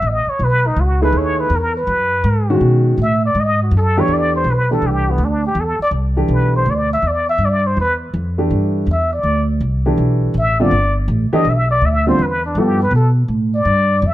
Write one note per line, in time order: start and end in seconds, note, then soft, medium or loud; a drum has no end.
0.02 0.25 A1 medium
0.07 0.31 D#5 medium
0.27 0.46 C#5 medium
0.27 muted upright bass stroke soft
0.39 0.75 B1 medium
0.44 0.68 B4 medium
0.67 0.82 D#4 medium
0.76 1.12 C#2 medium
0.81 1.03 F#4 medium
1.02 1.49 A3 medium
1.02 1.49 D#4 medium
1.02 1.48 E4 medium
1.02 1.49 G#4 medium
1.02 1.19 B4 medium
1.12 1.49 D#2 medium
1.18 1.42 C#5 medium
1.40 1.57 B4 loud
1.50 1.86 E2 medium
1.56 1.77 A#4 medium
1.77 2.58 B4 medium
1.87 2.23 F#2 medium
2.24 2.60 G#2 loud
2.50 2.96 D#3 medium
2.50 2.96 G#3 medium
2.50 2.96 C#4 medium
2.50 2.96 F#4 medium
2.61 2.97 B2 medium
2.98 3.34 A2 medium
3.02 3.23 E5 medium
3.26 3.42 D5 medium
3.35 3.71 G#2 medium
3.40 3.62 D#5 loud
3.63 3.79 F#4 medium
3.71 4.07 F#2 loud
3.77 4.02 A4 medium
3.97 4.44 E3 medium
3.97 4.44 A3 medium
3.97 4.44 D4 medium
3.97 4.44 G4 medium
3.97 4.15 C#5 loud
4.08 4.44 E2 medium
4.14 4.35 D5 medium
4.36 4.52 C5 medium
4.44 4.81 B1 medium
4.50 4.72 B4 medium
4.71 5.17 E3 medium
4.71 5.17 A3 soft
4.71 5.17 D4 medium
4.71 5.18 G4 medium
4.71 4.88 A4 medium
4.82 5.17 C2 medium
4.87 5.12 G4 medium
5.11 5.26 B3 medium
5.18 5.54 D2 medium
5.25 5.46 D4 medium
5.46 5.62 G4 medium
5.55 5.78 E2 medium
5.61 5.82 A4 medium
5.79 5.90 D5 loud
5.79 muted upright bass stroke soft
5.91 6.28 C2 medium
6.16 6.64 E3 medium
6.16 6.64 A3 medium
6.16 6.64 D4 medium
6.16 6.64 G4 medium
6.28 6.65 B1 medium
6.33 6.54 B4 medium
6.56 6.72 C5 loud
6.66 7.02 D2 medium
6.71 6.93 D5 medium
6.93 7.09 E5 loud
7.02 7.37 E2 medium
7.08 7.29 D5 medium
7.29 7.47 E5 loud
7.38 7.75 G2 medium
7.45 7.68 D5 medium
7.67 7.78 C5 medium
7.77 8.13 E2 medium
7.81 7.94 B4 medium
8.14 8.49 F2 medium
8.38 8.85 E3 medium
8.38 8.85 A3 medium
8.38 8.85 D4 medium
8.38 8.85 G4 medium
8.51 8.86 G2 medium
8.87 9.23 E2 medium
8.92 9.12 E5 medium
9.13 9.47 D5 medium
9.23 9.60 D2 medium
9.61 9.97 C2 medium
9.86 10.32 E3 medium
9.86 10.33 A3 medium
9.86 10.33 D4 medium
9.86 10.33 G4 medium
9.97 10.33 B1 medium
10.34 10.70 A1 medium
10.39 10.63 E5 loud
10.60 10.71 D3 medium
10.60 10.71 G3 medium
10.60 10.71 C4 medium
10.60 10.71 F4 medium
10.60 10.97 D5 medium
10.71 11.07 G1 medium
11.08 11.31 A1 medium
11.32 11.44 E3 medium
11.32 11.44 A3 medium
11.32 11.44 D4 medium
11.32 11.44 G4 medium
11.32 11.51 D#5 medium
11.32 muted upright bass stroke soft
11.45 11.81 B1 medium
11.50 11.70 E5 medium
11.71 11.87 D5 loud
11.81 12.17 D2 medium
11.86 12.08 E5 medium
12.07 12.18 D3 medium
12.07 12.18 G3 medium
12.07 12.18 C4 medium
12.07 12.18 F4 medium
12.07 12.24 C5 medium
12.19 12.54 E2 medium
12.23 12.45 B4 medium
12.46 12.61 D4 medium
12.55 12.90 G2 medium
12.55 12.78 F3 medium
12.55 12.79 B3 medium
12.55 12.78 E4 medium
12.55 12.78 A4 medium
12.59 12.81 G4 medium
12.83 12.93 B4 medium
12.91 13.27 B2 medium
12.96 13.09 A4 medium
13.28 13.64 A2 medium
13.55 14.08 D5 medium
13.65 14.01 G2 medium
14.02 14.14 F2 medium
14.07 14.14 E5 medium